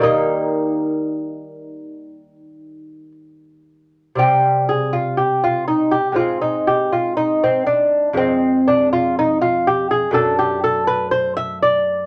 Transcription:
<<
  \new Staff \with { instrumentName = "Lute" } { \time 4/4 \key ees \major \tempo 4 = 60 ees'2. r4 | \key c \minor g'8 aes'16 f'16 g'16 f'16 ees'16 g'16 f'16 ees'16 g'16 f'16 ees'16 c'16 d'8 | c'8 d'16 f'16 ees'16 f'16 g'16 aes'16 a'16 g'16 a'16 b'16 c''16 e''16 d''8 | }
  \new Staff \with { instrumentName = "Lute" } { \clef bass \time 4/4 \key ees \major <ees g bes>1 | \key c \minor <c g c'>2 <aes, aes c'>2 | <f, aes>2 <fis, a d'>2 | }
>>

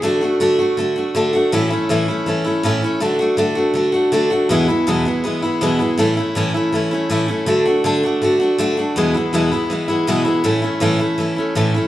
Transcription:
\new Staff \with { instrumentName = "Steel-string acoustic guitar" } { \time 4/4 \key a \major \tempo 4 = 161 <d a d' fis'>8 <a d' fis'>8 <d a d' fis'>8 <a d' fis'>8 <d a d' fis'>8 <a d' fis'>8 <d a d' fis'>8 <a d' fis'>8 | <a, e a cis' e'>8 <a cis' e'>8 <a, e a cis' e'>8 <a cis' e'>8 <e a cis' e'>8 <a cis' e'>8 <a, e a cis' e'>8 <a cis' e'>8 | <d a d' fis'>8 <a d' fis'>8 <d a d' fis'>8 <a d' fis'>8 <d a d' fis'>8 <a d' fis'>8 <d a d' fis'>8 <a d' fis'>8 | <e, b, e gis b e'>8 <e gis b e'>8 <e, b, e gis b e'>8 <e gis b e'>8 <e gis b e'>8 <e gis b e'>8 <e, b, e gis b e'>8 <e gis b e'>8 |
<a, e a cis' e'>8 <a cis' e'>8 <a, e a cis' e'>8 <a cis' e'>8 <e a cis' e'>8 <a cis' e'>8 <a, e a cis' e'>8 <a cis' e'>8 | <d a d' fis'>8 <a d' fis'>8 <d a d' fis'>8 <a d' fis'>8 <d a d' fis'>8 <a d' fis'>8 <d a d' fis'>8 <a d' fis'>8 | <e, b, e gis b e'>8 <e gis b e'>8 <e, b, e gis b e'>8 <e gis b e'>8 <e gis b e'>8 <e gis b e'>8 <e, b, e gis b e'>8 <e gis b e'>8 | <a, e a cis' e'>8 <a cis' e'>8 <a, e a cis' e'>8 <a cis' e'>8 <e a cis' e'>8 <a cis' e'>8 <a, e a cis' e'>8 <a cis' e'>8 | }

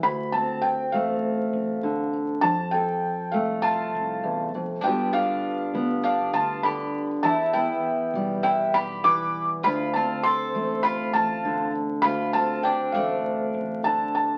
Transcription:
<<
  \new Staff \with { instrumentName = "Felt piano" } { \time 4/4 \key d \dorian \tempo 4 = 100 b''8 a''8 g''8 f''2 r8 | a''8 g''4 f''8 a''4. r8 | g''8 f''4. f''8 a''8 b''8. r16 | a''8 g''4. g''8 b''8 d'''8. r16 |
b''8 a''8 c'''4 b''8 a''4 r8 | b''8 a''8 g''8 f''4. a''8 a''8 | }
  \new Staff \with { instrumentName = "Mandolin" } { \time 4/4 \key d \dorian r1 | r2 f'4. r8 | d'8 d'4. d'8 f'8 g'8. r16 | e'8 e'4. e'8 g'8 b'8. r16 |
f'8 f'8 a'4 f'8 f'4 r8 | f'8 f'8 d'8 d'4. r4 | }
  \new Staff \with { instrumentName = "Steel-string acoustic guitar" } { \clef bass \time 4/4 \key d \dorian << { r8 c'4 a2~ a8 | r8 a'4 a2~ a8 | <d b f' g'>8 f'4 b2~ b8 | r8 b4 g2~ g8 |
r8 c'4 a2~ a8 | r8 c'4 a2~ a8 | } \\ { d,2. d4 | f,2. e,8 f,8 | g,2. d4 | e,2. e4 |
d,2. d4 | d,2. d4 | } >> }
  \new Staff \with { instrumentName = "Fretless electric bass" } { \clef bass \time 4/4 \key d \dorian d,4. a,,4 a,,4. | f,4. c,4 c,4. | g,4. d,4 d,4. | e,4. b,,4 b,,4. |
d,4. a,,4 a,,4. | d,4. a,,4 a,,4. | }
>>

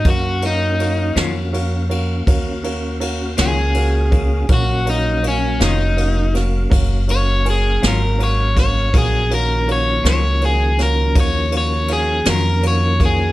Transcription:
<<
  \new Staff \with { instrumentName = "Grand piano" } { \time 12/8 \key ees \minor \tempo 4. = 54 <ges' bes' des'' f''>8 <ges' bes' des'' f''>8 <ges' bes' des'' f''>8 <ges' bes' des'' f''>8 <ges' bes' des'' f''>8 <ges' bes' des'' f''>8 <ges' bes' des'' f''>8 <ges' bes' des'' f''>8 <ges' bes' des'' f''>8 <ges' bes' des'' f''>8 <ges' bes' des'' f''>8 <ges' bes' des'' f''>8 | <ges' bes' des'' f''>8 <ges' bes' des'' f''>8 <ges' bes' des'' f''>8 <ges' bes' des'' f''>8 <ges' bes' des'' f''>8 <ges' bes' des'' f''>8 <ges' bes' des'' f''>8 <ges' bes' des'' f''>8 <ges' bes' des'' aes''>8 <ges' bes' des'' f''>8 <ges' bes' des'' f''>8 <ges' bes' des'' f''>8 | <ges' bes' des'' f''>8 <ges' bes' des'' f''>8 <ges' bes' des'' f''>8 <ges' bes' des'' f''>8 <ges' bes' des'' f''>8 <ges' bes' des'' f''>8 <ges' bes' des'' f''>8 <ges' bes' des'' f''>8 <ges' bes' des'' f''>8 <ges' bes' des'' f''>8 <ges' bes' des'' f''>8 <ges' bes' des'' f''>8 | }
  \new Staff \with { instrumentName = "Overdriven electric guitar" } { \time 12/8 \key ees \minor ges'8 ees'4 r2. aes'4. | ges'8 ees'8 des'8 ees'4 r4 des''8 aes'8 bes'8 des''8 des''8 | aes'8 bes'8 des''8 des''8 aes'8 bes'8 des''8 des''8 aes'8 bes'8 des''8 aes'8 | }
  \new Staff \with { instrumentName = "Tonewheel organ" } { \time 12/8 \key ees \minor <bes des' ges' f''>1. | <ges bes des' f''>1. | <f ges ces' d'>8 <ees f bes des'>1~ <ees f bes des'>4. | }
  \new Staff \with { instrumentName = "Clean electric guitar" } { \time 12/8 \key ees \minor r4. <ees ges des' f'>8 r2 r8 <ees ges des' f'>8 r4 | r4. <ees ges des' f'>8 r2 r8 <ees ges des' f'>8 r4 | r4. <ees ges des' f'>8 r2 r8 <ees ges des' f'>8 r4 | }
  \new Staff \with { instrumentName = "Upright bass" } { \clef bass \time 12/8 \key ees \minor ges,4. f,4. ees,4. des,4. | bes,,4. f,,4. ges,,4. aes,,4. | bes,,4. des,4. ees,4. f,4. | }
  \new DrumStaff \with { instrumentName = "Drums" } \drummode { \time 12/8 <bd cymr>8 cymr8 cymr8 <cymr sn>8 cymr8 cymr8 <bd cymr>8 cymr8 cymr8 <cymr sn>8 cymr8 <bd cymr>8 | <bd cymr>8 cymr8 cymr8 <cymr sn>8 cymr8 <cymr sn>8 <bd cymr>8 cymr8 cymr8 <cymr sn>8 cymr8 <bd cymr sn>8 | <bd cymr>8 cymr8 cymr8 <cymr sn>8 cymr8 <cymr sn>8 <bd cymr>8 cymr8 cymr8 <cymr sn>8 cymr8 <bd cymr>8 | }
>>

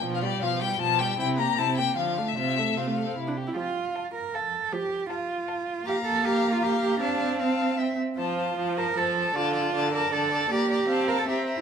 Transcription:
<<
  \new Staff \with { instrumentName = "Violin" } { \time 3/4 \key f \major \tempo 4 = 156 r16 f''16 d''8 f''8 g''8 a''8 g''8 | g''8 bes''8 a''8 g''8 f''8. e''16 | e''4 f''4 r4 | r4 a''4 a''4 |
r4 a''4 a''4 | bes''4 bes''4 bes''4 | a''4 a''4 g''8 r8 | a''8 a''8 a''8 a''8 a''8 a''8 |
a''8 a''8 a''8 a''8 a''8 a''8 | bes''8 bes''8 a''8 a''8 bes''8 bes''8 | }
  \new Staff \with { instrumentName = "Violin" } { \time 3/4 \key f \major f'8 g'8 f'8 g'8 f'8 g'8 | e'8 g'8 e'8 g'8 f'8 d'8 | f'8 a'8 f'8 a'8 e'8 g'8 | r4 f''4 f''4 |
r4 f''4 f''4 | f''4 f''4 f''4 | f''4 f''4 e''8 r8 | c''8 c''8 c''8 c''8 c''8 c''8 |
d''8 d''8 d''8 d''8 d''8 d''8 | d''8 d''8 f''8 f''8 e''8 e''8 | }
  \new Staff \with { instrumentName = "Cello" } { \time 3/4 \key f \major b,4 b,4 b,4 | c4 c4 d4 | c4 c4 c4 | f'4. bes'8 a'4 |
g'4 f'2 | g'8 a'8 g'8. f'16 g'8 g'8 | d'4 c'4. r8 | f'4. bes'8 a'4 |
f'4. bes'8 a'4 | g'4. bes'16 a'16 g'8. e'16 | }
  \new Staff \with { instrumentName = "Viola" } { \time 3/4 \key f \major f8 g8 f8 g8 f8 g8 | c'8 bes8 c'8 bes8 f8 a8 | c'8 a8 c'16 a8 c'8 d'8 e'16 | f4 r2 |
f4 r2 | bes2. | c'2~ c'8 r8 | f4 f4 f4 |
d4 d4 d4 | bes4 c'4 c'4 | }
>>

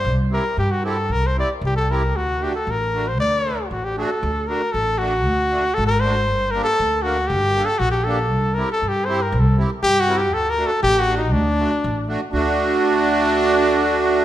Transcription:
<<
  \new Staff \with { instrumentName = "Cornet" } { \time 2/4 \tempo 4 = 118 c''8 bes'8 g'16 fis'16 a'8 | bes'16 c''16 d''16 r16 g'16 a'16 bes'8 | fis'8 g'16 a'16 bes'8. c''16 | d''4 fis'16 g'16 a'8~ |
a'8 bes'8 a'8 fis'8~ | fis'4 a'16 bes'16 c''8~ | c''8 bes'16 a'8. fis'8 | g'8. a'16 fis'16 g'16 a'8~ |
\tuplet 3/2 { a'8. bes'8 a'16~ a'16 g'8 c''8 bes'16~ } | \tuplet 3/2 { bes'16 a'8 r8. g'8 fis'8 g'8 } | \tuplet 3/2 { a'8 bes'8 a'8 g'8 fis'8 ees'8 } | d'4. r8 |
d'2~ | d'2 | }
  \new Staff \with { instrumentName = "Accordion" } { \time 2/4 r8 <c' e' g'>16 r8. <c' e' g'>16 r16 | r8 <c' e' g'>16 r8. <c' e' g'>16 r16 | r8 <a d' fis'>16 r8. <a d' fis'>16 r16 | r8 <a d' a'>16 r8. <a d' fis'>16 r16 |
r8 <a d' fis'>16 r8. <a d' fis'>16 r16 | r8 <a d' fis'>16 r8. <a d' fis'>16 r16 | r8 <bes d' g'>16 r8. <bes d' bes'>16 r16 | r8 <bes d' a'>16 r8. <bes d' g'>16 r16 |
r8 <c' e' g'>16 r8. <c' e' g'>16 r16 | r8 <c' e' g'>16 r8. <c' e' bes'>16 r16 | r8 <a d' fis'>16 r8. <a d' fis'>16 r16 | r8 <a d' fis'>16 r8. <a d' fis'>16 r16 |
<a d' fis'>2~ | <a d' fis'>2 | }
  \new Staff \with { instrumentName = "Upright bass" } { \clef bass \time 2/4 c,4 g,4 | c,4 c,4 | d,4 a,,4 | d,4 a,,4 |
d,4 a,,4 | d,4 gis,,4 | g,,4 d,4 | g,,4 bes,,4 |
c,4 g,4 | c,4 g,4 | d,4 a,,4 | d,4 a,,4 |
d,2~ | d,2 | }
>>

